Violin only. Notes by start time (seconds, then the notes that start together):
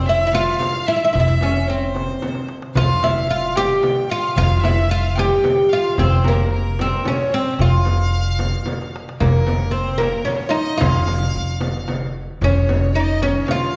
0.06 E5
0.32 F5
0.58 F5
0.86 E5
1.14 E5
1.68 C5
1.75 C#5
1.81 C5
2.75 F5
3.29 F5
3.55 G5
4.10 F5
4.35 F5
4.62 E5
4.89 F5
5.15 G5
5.69 F5
5.97 C5
6.25 A#4
6.51 A#4
7.05 C#5
7.32 C5
7.53 G5
7.61 F5
9.20 A#4
9.73 C5
10.00 A#4
10.28 C#5
10.55 D#5
10.81 F5
12.42 C#5
12.49 C5
12.56 C#5
12.94 D#5
13.21 C#5
13.46 F5